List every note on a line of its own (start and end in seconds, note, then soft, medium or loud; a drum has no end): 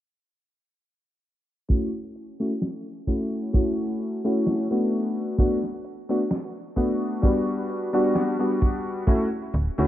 1.69 1.88 A3 medium
1.69 1.88 C#4 medium
1.69 1.89 E4 medium
1.69 1.89 F#4 medium
1.69 kick loud
1.69 closed hi-hat medium
2.16 closed hi-hat medium
2.40 2.50 A3 medium
2.40 2.51 C#4 medium
2.40 2.51 E4 medium
2.40 2.51 F#4 medium
2.62 snare loud
2.62 closed hi-hat medium
3.07 3.48 A3 medium
3.07 3.49 C#4 medium
3.07 3.49 E4 medium
3.07 3.49 F#4 medium
3.07 kick medium
3.07 closed hi-hat medium
3.53 4.19 A3 medium
3.53 4.19 C#4 medium
3.53 4.19 E4 medium
3.53 4.19 F#4 medium
3.53 kick loud
3.53 closed hi-hat medium
4.00 closed hi-hat medium
4.24 4.65 A3 medium
4.24 4.65 C#4 medium
4.24 4.65 E4 medium
4.24 4.66 F#4 loud
4.46 snare loud
4.46 closed hi-hat medium
4.71 5.33 A3 medium
4.71 5.33 B3 medium
4.71 5.34 D4 medium
4.71 5.34 F#4 medium
4.93 closed hi-hat medium
5.38 5.58 A3 medium
5.38 5.58 B3 medium
5.38 5.58 D4 medium
5.38 5.58 F#4 medium
5.38 kick loud
5.38 closed hi-hat medium
5.64 snare soft
5.85 closed hi-hat medium
6.09 6.20 A3 medium
6.09 6.20 B3 medium
6.09 6.20 D4 medium
6.09 6.20 F#4 medium
6.31 snare loud
6.31 closed hi-hat medium
6.76 7.18 A3 medium
6.76 7.18 B3 medium
6.76 7.18 D4 medium
6.76 7.18 F#4 medium
6.76 kick medium
6.76 closed hi-hat medium
7.22 7.88 G3 medium
7.22 7.88 B3 medium
7.22 7.88 D4 medium
7.22 7.88 F#4 medium
7.22 kick loud
7.22 closed hi-hat medium
7.69 closed hi-hat medium
7.93 8.34 G3 medium
7.93 8.34 B3 medium
7.93 8.34 D4 medium
7.93 8.35 F#4 loud
8.15 snare loud
8.15 closed hi-hat medium
8.39 9.02 G3 medium
8.39 9.02 B3 medium
8.39 9.03 D4 medium
8.39 9.03 F#4 medium
8.62 kick loud
8.62 closed hi-hat medium
9.07 9.27 A3 medium
9.07 9.27 C#4 medium
9.07 9.27 E4 medium
9.07 9.27 F#4 medium
9.07 kick loud
9.07 closed hi-hat medium
9.54 9.69 D1 loud
9.54 closed hi-hat medium
9.78 9.87 D2 medium
9.78 9.87 A3 medium
9.78 9.87 C#4 medium
9.78 9.87 E4 medium
9.78 9.87 F#4 loud